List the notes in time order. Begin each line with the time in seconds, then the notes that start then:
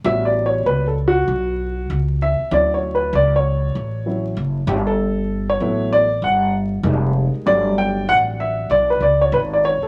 0.04 A1 G3 B3 C#4 F#4 E5
0.25 D5
0.46 C#5
0.66 C#2 B4
0.88 A4
1.08 F#4
1.28 B1
1.90 C#2
2.22 E5
2.40 muted upright bass stroke
2.51 D2 F#3 C#4 E4 D5
2.74 C#5
2.95 B4
3.13 C#2 D5
3.36 C#5
3.75 A1
4.06 F#3 C#4 E4
4.37 F#1
4.67 G1 G4
4.87 A4
5.49 C#5
5.60 A1 F#3 A3 B3 E4
5.93 D5
6.22 G1 F#5
6.83 F1 G3 G#3 A#3 D#4
7.34 muted upright bass stroke
7.46 G1 F#3 G3 A3 D4 D5
7.78 G5
8.09 A1 F#5
8.40 E5
8.70 B1 D5
8.90 B4
9.00 C#2 D5
9.21 C#5
9.32 G#1 B4
9.53 D5
9.65 C#5
9.82 A4, muted upright bass stroke